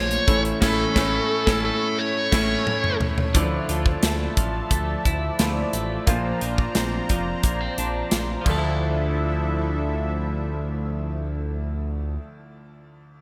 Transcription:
Already playing: A#1 F3 A#3 D4 F4 C#5
0.11 closed hi-hat
0.27 A1 A2 E3 A3 C#4 E4 C#5, kick, closed hi-hat
0.45 closed hi-hat
0.60 A1 A2 A3 C#4 E4 A4 C#5, kick, snare, crash
0.94 A1 A2 A3 C#4 E4 C#5, kick, snare
1.46 A1 A2 A3 C#4 E4 C#5, kick, snare
1.65 A4
1.99 C#5
2.31 A1 A2 A3 C#4 E4 C#5, kick, snare, crash
2.67 mid tom
2.84 mid tom
3.01 floor tom
3.18 floor tom
3.34 D2 D3 F3 A3 E4 D5 E5 A5, kick, closed hi-hat
3.69 D2 F3, closed hi-hat
3.86 kick
4.03 D2 A3, snare, closed hi-hat
4.37 A1 F3, kick, closed hi-hat
4.71 D2 A3, kick, closed hi-hat
5.05 D2 E4, kick, closed hi-hat
5.39 D2 F3 A3 E4 D5, snare, closed hi-hat
5.73 A1 A3, closed hi-hat
6.06 A#1 A#2 F3 A#3 D4 F4 C5 A#5, kick, closed hi-hat
6.41 A#1 F3, closed hi-hat
6.58 kick
6.75 A#1 C4, snare, closed hi-hat
7.09 F1 F3, kick, closed hi-hat
7.43 A#1 A#3, kick, closed hi-hat
7.61 C4
7.78 A#1 D4, closed hi-hat
8.11 A#1 F3, snare, closed hi-hat
8.41 F3
8.45 D2 F3 D4 E4 A4 E5, kick, crash
8.51 A3
8.58 E4

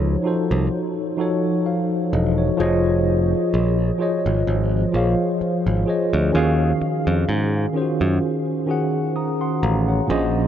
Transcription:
Already playing: C#2 F3 D#4 F#4 A4 C#5
0.23 F3 D#4 F#4 A4
0.27 C5
0.51 C2
1.17 F3 D#4 F#4 A4
1.21 C#5
1.66 C5 F5
2.13 E1 A4 D#5
2.38 F#4 C#5
2.57 F1 F3 F4 G#4 C5 C#5
2.62 D#5
3.54 A#1
3.98 F3 F4 G#4 C5 C#5
4.02 D#5
4.26 G#1
4.47 G#1
4.92 A#1 F3 F4 G#4 C5 C#5
4.96 F5
5.41 muted picked electric bass stroke
5.67 G#1
5.85 F3 F4 G#4 C5 C#5
5.90 D#5
6.13 D2
6.32 D#2 D#3 C#4 F4 G#4
6.36 F5
6.41 F#4
6.82 muted picked electric bass stroke
7.07 F2
7.29 G#2
7.73 D#3 C#4 F4 G#4
7.77 C5
7.82 F#4
8.01 F#2
8.66 D#3 C#4 F#4 G#4
8.71 F#5
9.16 A#5 D#6
9.41 F#5 C6
9.63 A1 F5 A#5
9.88 C#5 F#5
10.07 A#1 A#2 F3 C#4 G#4 C5
10.12 D#5

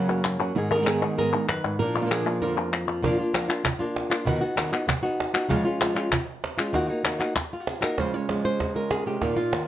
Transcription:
Already playing: F#2 C#3 F#3 A#3 F#4
0.09 F#3 A#3 C#4 F#4
0.24 A#3, muted nylon-string guitar stroke, clap
0.39 F#3 A#3 C#4 F#4
0.55 G#2 D#3 B3 D#4 G#4, muted nylon-string guitar stroke
0.71 D#3 G#3 B3 D#4 G#4 A#4
0.78 D#3 G#3 B3 D#4 G#4
0.82 D#3 G#3 B3 D#4 G#4
0.87 G#2 D#3 G#3 B3 D#4 G#4, clap
1.02 G#3 B3 D#4 G#4
1.17 G#2 D#3 G#3 B3 D#4 G#4 A#4
1.32 G#3 B3 D#4 G#4
1.48 F#2 B4, muted nylon-string guitar stroke, clap
1.65 G#2, clap
1.79 A#2 F3 A#3 D4 A#4, muted nylon-string guitar stroke
1.96 D3 A#3 D4 F4
2.01 D3 A#3 D4 F4
2.06 D3 A#3 D4 F4
2.10 A#2 D3 F3 A#3 D4 F4 G#4, clap
2.25 A#3 D4 F4, clap
2.41 F2 A#2 D3 A#3 D4 F4 A#4
2.56 A#3 D4 F4
2.72 muted nylon-string guitar stroke, clap
2.88 F3
3.02 A#2 F3 A#3 D4 F4, cajon bass
3.18 A#3 D4 F4
3.34 F3 A#3 D4 F4, cajon slap, clap
3.48 A#3 D4 F4, clap
3.64 muted nylon-string guitar stroke, cajon bass, clap
3.79 A#3 D4 F4
3.96 cajon slap
4.10 A#3 D4 F4, cajon slap, clap
4.25 B2 D#3 B3 D#4 F#4, cajon bass
4.41 B3 D#4 F#4
4.56 D#3 B3 D#4 F#4, cajon slap, clap
4.72 B3 D#4 F#4, clap
4.87 muted nylon-string guitar stroke, cajon bass, clap
5.03 B3 D#4 F#4
5.20 cajon slap
5.34 B3 D#4 F#4, clap
5.49 C#3 F3 G#3 C#4 F4, cajon bass
5.65 G#3 C#4 F4
5.80 F3 G#3 C#4 F4, cajon slap, clap
5.96 G#3 C#4 F4, clap
6.11 muted nylon-string guitar stroke, cajon bass, clap
6.44 cajon slap
6.58 G#3 C#4 F4, cajon slap, clap
6.73 D#3 A#3 D#4 F#4, cajon bass, cajon slap
6.88 A#3 D#4 F#4
7.03 D#3 A#3 D#4 F#4, cajon slap, clap
7.20 A#3 D#4 F#4, clap
7.35 muted nylon-string guitar stroke, cajon bass, cajon slap, clap
7.53 F4
7.60 F#4
7.67 G#4, cajon slap
7.81 A#3 D#4 F#4 A#4, cajon slap, clap
7.97 C#3 F3 G#3 C#4 F4 C5, cajon bass, cajon slap
8.13 G#3 C#4 F4 C#5
8.29 F3 G#3 C#4 F4, cajon slap
8.44 G#3 C#4 F4 C5
8.60 muted nylon-string guitar stroke, cajon bass, cajon slap
8.75 G#3 C#4 F4 A#4
8.91 C#3 G#4, cajon slap
9.06 C3 G#3 C#4 F4 G4
9.21 A#2 D#3 A#3 D#4 F4, cajon bass, cajon slap
9.37 A#3 D#4 F4
9.52 D#3 A#3 D#4 F4, cajon slap

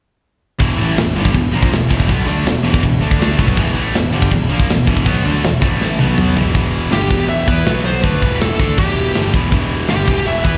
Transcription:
0.60 E1 E2 B2 E3, kick, crash
0.78 A1 A2 E3 A3, crash
0.97 E1 E2 B2, snare, crash
1.15 G1 G2 D3 G3, crash
1.25 kick
1.34 E1 E2 B2, kick, crash
1.53 A#1 A#2 F3 A#3, crash
1.62 kick
1.72 E1 E2 B2, snare, crash
1.90 E1 E2 B2 E3, kick, crash
2.00 kick
2.08 B1 B2 F#3 B3, kick, crash
2.26 D2 D3 A3 D4, crash
2.45 E1 E2 B2, snare, crash
2.63 E1 E2 B2 E3, crash
2.74 kick
2.83 E1 E2 B2, kick, crash
3.01 D2 D3 A3 D4, crash
3.11 kick
3.19 D2 D3 A3 D4, snare, crash
3.38 B1 B2 F#3 B3, kick, crash
3.48 kick
3.56 E1 E2 B2 E3, kick, crash
3.74 A1 A2 E3 A3, crash
3.93 E1 E2 B2, snare, crash
4.12 G1 G2 D3 G3, crash
4.22 kick
4.31 E1 E2 B2, kick, crash
4.49 A#1 A#2 F3 A#3, crash
4.60 kick
4.68 E1 E2 B2, snare, crash
4.87 E1 E2 B2 E3, kick, crash
4.97 kick
5.05 B1 B2 F#3 B3, kick, crash
5.23 D2 D3 A3 D4, crash
5.43 E1 E2 B2, snare, crash
5.62 A1 A2 E3 A3, kick, crash
5.81 snare
5.98 B1 B2 F#3 B3, high tom
6.18 mid tom
6.35 E1 E2 B2 E3, floor tom
6.55 E1 E2 B2 E3, kick, open hi-hat
6.92 G1 G2 D3 G3 G4, snare, open hi-hat
7.10 E1 E2 B2 E3, kick
7.29 E5, open hi-hat
7.47 E2 E3 B3 E4 B4, kick
7.66 B1 B2 F#3 B3, snare, open hi-hat
7.86 C5
8.03 D2 D3 A3 D4 B4, kick, open hi-hat
8.22 E1 E2 B2 E3, kick
8.41 A4, snare, open hi-hat
8.59 D2 D3 A3 D4, kick
8.78 E1 E2 B2 E3 G4, kick, open hi-hat
9.15 G1 G2 D3 G3, snare, open hi-hat
9.34 E1 E2 B2 E3, kick
9.52 E1 E2 B2 E3, kick, open hi-hat
9.88 G1 G2 D3 G3 G4, snare, open hi-hat
10.07 E1 E2 B2 E3, kick
10.26 E5, open hi-hat
10.44 E2 E3 B3 E4 B4, kick

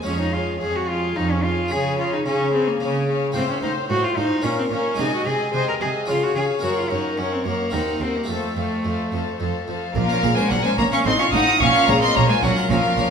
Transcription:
0.02 G#3 C#4 G#4
0.06 F2 C#5 F5
0.20 D#4
0.33 F4 G#4 C#5 F5
0.61 F2 G#4 C#5 F5
0.76 F#4
0.88 F4 G#4 C#5 F5
1.16 F2 D#4 G#4 C#5 F5
1.31 C#4
1.44 F4 G#4 C#5 F5
1.68 C#3 C#4 G#4 C#5 F5
1.98 F4 G#4 C#5 F5
2.13 D#4
2.25 C#3 C#4 G#4 C#5 F5
2.53 C4 G#4 C#5 F5
2.67 A#3
2.80 C#3 G#4 C#5 F5
3.07 G#4 C#5 F5
3.32 A2 C4 F4 C5 F5
3.49 C#4
3.62 A2 D#4 C5 F5
3.89 A2 F#4 C5 F5
4.04 F4
4.16 A2 D#4 C5 F5
4.42 A#2 C#4 F4 A#4 C#5 F5
4.58 C4
4.71 A#2 C#4 A#4 C#5 F5
4.95 G#3 D#4 G#4 G#5
4.99 C3 D#4 D#5
5.14 F#4
5.26 C3 G#4 D#5 G#5
5.53 C3 G#4 C5 D#5 G#5
5.68 A#4
5.81 C3 G#4 D#5 G#5
6.06 C#3 C#4 F4 G#4 C#5 F5
6.23 F#4
6.36 C#3 G#4 C#5 F5
6.59 A#3 C#4
6.63 F#2 F#4 A#4 C#5 F#5
6.78 F4
6.91 F#2 D#4 A#4 C#5 F#5
7.18 F#2 C#4 A#4 C#5 F#5
7.33 C4
7.46 F#2 A#3 A#4 C#5 F#5
7.70 D#2 A#3 C4 D#4 A#4 C5 F#5
8.01 D#2 C4 A#4 C5 F#5
8.16 A#3
8.24 A3 C4
8.28 F2 A3 A4 C5 F5
8.56 F2 A4 C5 F5
8.84 F2 A4 C5 F5
9.12 F2 A4 C5 F5
9.40 F2 A4 C5 F5
9.67 F2 A4 C5 F5
9.95 A#1 A#2 F3 A#3 A#4 F5
10.09 C#4 A#4
10.23 A#1 A#2 A#3 G#4
10.36 G#3 C#4 A#4 C5 G#5
10.50 A#1 A#2 F#3 A#3 F4 A#4 F#5
10.64 G#3 A#3 C#4 C5 G#5
10.78 A#1 A#2 A#3 C#4 C#5 A#5
10.92 C#4 A#4 F5 C#6
11.06 A1 A2 C4 D#4 D#5 C6
11.19 C#4 F4 F5 C#6
11.33 A1 A2 D#4 F#5 D#6
11.47 F4
11.60 A#1 A#2 C#4 F5 C#6
11.74 F4 A#4
11.88 A#1 A#2 A#3 C#4 G#4 C#5 A#5
12.01 C4 F4 A#4 D#5 C6
12.15 A#1 A#2 A#3 C#4 F4 C#5 A#5
12.28 G#3 A#3 F4 C5 G#5
12.42 A#1 A#2 F#3 C#4 A#4 F#5
12.56 F4 A#4
12.69 A#1 A#2 F3 C#4 A#4 F5
12.84 A#3 F4
12.97 A#1 A#2 C#4

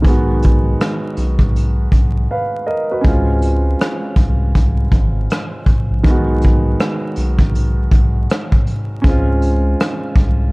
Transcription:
0.02 B1 D#3 G#3, kick, closed hi-hat
0.06 B3 F#4
0.42 kick, closed hi-hat
0.81 cross-stick, closed hi-hat
1.17 B1, closed hi-hat
1.39 kick
1.56 closed hi-hat
1.92 B1, kick, closed hi-hat
2.31 B4 F5
2.66 A#4 D#5
2.91 F#4 B4
3.01 C#2 G#3 C#4, kick, closed hi-hat
3.06 C4 F4
3.42 closed hi-hat
3.81 cross-stick, closed hi-hat
4.16 C2, kick, closed hi-hat
4.55 kick, closed hi-hat
4.92 G#1, kick, closed hi-hat
5.30 cross-stick, closed hi-hat
5.66 kick, closed hi-hat
5.90 A#1
6.03 B1 D#3 G#3, kick, closed hi-hat
6.08 B3 F#4
6.42 kick, closed hi-hat
6.80 cross-stick, closed hi-hat
7.16 B1, closed hi-hat
7.39 kick
7.55 closed hi-hat
7.91 B1, kick, closed hi-hat
8.30 cross-stick, closed hi-hat
8.52 kick
8.67 closed hi-hat
9.02 C#2 G#3 C#4, kick, closed hi-hat
9.07 C4 F4
9.42 closed hi-hat
9.80 cross-stick, closed hi-hat
10.16 C2, kick, closed hi-hat

